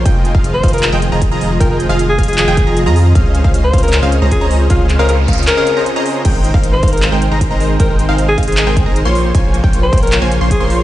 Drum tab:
CC |--------------------------------|--------------------------------|--------------------------------|--------------------------------|
HH |x---x---x---xxxxx---x---x---o---|x---x---x---xxxxx---x---x---o---|x---x---x---xxxxx---x---x---o---|x---x---x---xxxxx---x---x---o---|
CP |----------------x---------------|----------------x---------------|----------------x---------------|----x-----------x---------------|
BD |o-----o-----o-----------o-------|o-----------o-------o-----------|o-----o-----o-----------o-------|o-----------o-------------------|

CC |x-------------------------------|--------------------------------|--------------------------------|
HH |x---x---x---xxxxx---x---x---o---|x---x---x---xxxxx---x---x---o---|x---x---x---xxxxx---x---x---o---|
CP |----------------x---------------|----------------x---------------|----------------x---------------|
BD |o-----o-----o-----------o-------|o-----------o-------o-----------|o-----o-----o-----------o-------|